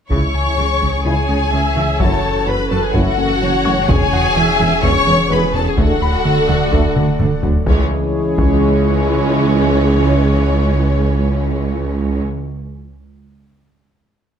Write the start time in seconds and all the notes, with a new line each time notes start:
0.10 C#2 C#3 E3 G#3 C#4 E4 G#4 C#5 C#6, taiko
0.34 C#2 G#5
0.58 C#2 C#3 G#3 G#4
0.81 C#2 C#3 G#3, taiko
1.05 C#2 C#3 G#3 E4 G#4 C#5 G#5
1.29 C#2 C#3 G#3
1.52 C#2 C#3 G#3 E5
1.76 C#2 C#3 E3
1.99 F#1 F#2 F#3 A3 E4 F#4 A4 C#5 F#5 A5, taiko
2.23 F#2
2.47 F#1 F#2 F#3 C#4 B4 B5
2.70 F#1 F#2 F#3 C#4 A4 A5
2.83 G#4 G#5
2.94 F#1 F#2 F#3 A3 E4 F#4 A4 F#5, taiko
3.18 F#1 F#2 F#3 C#4
3.41 F#1 F#2 F#3 C#4 C#5
3.65 F#1 F#2 A3 C#6
3.89 E1 E2 C#3 G#3 C#4 G#4 C#5 G#5, taiko
4.13 E2 F#4 F#5
4.36 E1 E2 E3 G#3 E5
4.59 E1 E2 E3 G#3
4.83 E1 E2 C#3 G#3 C#4 C#5 C#6, taiko
5.07 E1 E2 E3 G#3
5.31 E1 E2 E3 G#3 G#4 B4 B5
5.54 E1 E2 E3 A4 A5
5.67 G#4 G#5
5.77 D1 D2 D3 A3 D4 F#4 A4 D5 F#5, taiko
6.02 D2 B5
6.25 D2 D3 A3
6.48 D2 D3 A3 F#4 F#5, taiko low
6.72 D2 D3 A3 D4, taiko
6.96 D2 D3 A3, taiko mid
7.19 D2 D3 A3, taiko low-mid
7.43 D2 F#3, taiko low
7.66 C#2 E3 G#3 C#4 E4 G#4 C#5, taiko
8.38 C#2 E3 G#3 C#4 C#5, taiko